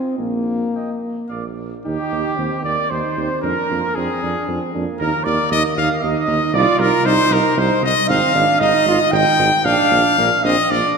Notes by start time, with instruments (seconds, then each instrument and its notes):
Already playing: french horn C4
0.18 tuba A#1, french horn A#3
0.74 trombone A#3, flugelhorn D#5, trumpet G5
1.28 tuba A#1, trombone A#3, flugelhorn D5, trumpet F5
1.85 tuba D#2, french horn D#4, trombone D#4, trumpet G4, flugelhorn G4
2.12 tuba D#2, french horn D#4
2.37 tuba D#2, trombone C4, french horn D#4
2.63 tuba D#2, trombone A#3, french horn D#4, flugelhorn D5, trumpet D5
2.89 tuba D#2, french horn D#4, trombone D#4, flugelhorn C5, trumpet C5
3.17 tuba D#2, trombone C4, french horn D#4
3.42 tuba F2, french horn D4, trombone D4, trumpet A#4, flugelhorn A#4
3.70 tuba F2, trombone A#3, french horn D4
3.95 tuba F2, trombone C4, french horn D4, flugelhorn G#4, trumpet G#4
4.23 tuba F2, trombone D4, french horn D4
4.48 tuba F2, trombone C4, french horn D4
4.74 tuba F2, trombone A#3, french horn D4
4.99 tuba D#2, french horn D#4, flugelhorn A#4, trumpet A#4
5.24 tuba D#2, french horn D#4, flugelhorn D5, trumpet D5
5.50 tuba D#2, french horn D#4, flugelhorn D#5, trumpet D#5
5.76 tuba D#2, french horn D#4, flugelhorn F5, trumpet F5
6.01 tuba D#2, trombone D#4, french horn D#4, flugelhorn D#5, trumpet D#5
6.27 tuba D#2, french horn D#4
6.53 tuba C2, french horn D#4, trombone F4, flugelhorn D5, trumpet D5
6.79 tuba C2, french horn D#4, flugelhorn A#4, trumpet A#4
7.05 tuba C2, trombone D#4, french horn D#4, flugelhorn C5, trumpet C5
7.30 tuba C2, french horn D#4, flugelhorn A#4, trumpet A#4
7.56 tuba C2, french horn D#4, trombone D#4, flugelhorn C5, trumpet C5
7.83 tuba C2, french horn D#4, flugelhorn D#5, trumpet D#5
8.08 tuba G#1, trombone C4, french horn D#4, flugelhorn F5, trumpet F5
8.34 tuba G#1, trombone D4, french horn D#4
8.60 tuba G#1, french horn D#4, trombone D#4, flugelhorn D#5, trumpet D#5
8.85 tuba G#1, french horn D#4, trombone F4
9.11 tuba G#1, french horn D#4, trombone D#4, flugelhorn G5, trumpet G5
9.38 tuba G#1, french horn D#4
9.65 tuba A#1, french horn D4, trombone D4, trumpet F5, flugelhorn F5
9.91 tuba A#1, french horn D4
10.18 tuba A#1, trombone A#3, french horn D4
10.44 tuba A#1, trombone C4, french horn D4, flugelhorn D#5, trumpet D#5
10.70 tuba A#1, french horn D4, trombone D4, flugelhorn D5, trumpet D5